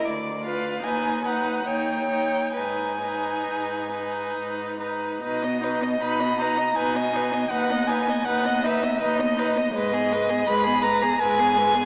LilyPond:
<<
  \new Staff \with { instrumentName = "Violin" } { \time 3/4 \key gis \minor \tempo 4 = 78 d''8 f''8 gis''8 fis''8 g''4 | gis''2 r4 | \key b \major dis''4 b''8 ais''8 gis''4 | fis''8 gis''8 fis''8 e''8 dis''4 |
dis''4 b''8 ais''8 gis''4 | }
  \new Staff \with { instrumentName = "Violin" } { \time 3/4 \key gis \minor r8 b'8 b'8 b'8 cis''8 cis''8 | b'8 b'4 b'4 b'8 | \key b \major b'16 dis''16 b'16 dis''16 b'16 dis''16 b'16 dis''16 b'16 dis''16 b'16 dis''16 | b'16 dis''16 b'16 dis''16 b'16 dis''16 b'16 dis''16 b'16 dis''16 b'16 dis''16 |
b'16 gis'16 b'16 gis'16 b'16 gis'16 b'16 gis'16 b'16 gis'16 b'16 gis'16 | }
  \new Staff \with { instrumentName = "Viola" } { \time 3/4 \key gis \minor r8 f'8 dis'8 dis'8 dis'8 dis'8 | dis'8 dis'4 dis'4 dis'8 | \key b \major dis'16 b16 dis'16 b16 dis'16 b16 dis'16 b16 dis'16 b16 dis'16 b16 | dis'16 b16 dis'16 b16 dis'16 b16 dis'16 b16 dis'16 b16 dis'16 b16 |
gis16 b16 gis16 b16 gis16 b16 gis16 b16 gis16 b16 gis16 b16 | }
  \new Staff \with { instrumentName = "Cello" } { \clef bass \time 3/4 \key gis \minor d,4 dis,4 dis,4 | gis,4 gis,4 gis,4 | \key b \major b,4 b,4 b,4 | dis,4 dis,4 dis,4 |
gis,4 gis,4 gis,4 | }
>>